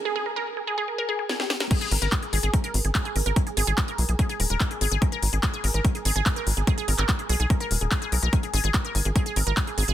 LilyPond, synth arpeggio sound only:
\new Staff \with { instrumentName = "Synth arpeggio sound" } { \time 4/4 \key gis \minor \tempo 4 = 145 gis'16 gis'16 ais'16 ais'16 r16 gis'16 gis'16 gis'16 ais'16 ais'16 gis'16 gis'16 gis''16 g'16 g'16 ais'16 | gis'16 gis'16 ais'16 ais'16 r16 gis'16 gis'16 gis'16 ais'16 ais'16 r16 gis'16 gis'16 gis'16 ais'16 ais'16 | r16 gis'16 gis'16 gis'16 ais'16 ais'16 r16 gis'16 gis'16 gis'16 ais'16 ais'16 r16 gis'16 gis'16 gis'16 | ais'16 ais'16 r16 gis'16 gis'16 gis'16 ais'16 ais'16 r16 gis'16 gis'16 gis'16 ais'16 ais'16 r16 gis'16 |
gis'16 gis'16 ais'16 ais'16 r16 gis'16 gis'16 gis'16 ais'16 ais'16 r16 gis'16 gis'16 gis'16 ais'16 ais'16 | gis''16 gis'16 gis'16 gis'16 ais'16 ais'16 gis''16 gis'16 gis'16 gis'16 ais'16 ais'16 gis''16 gis'16 gis'16 gis'16 | }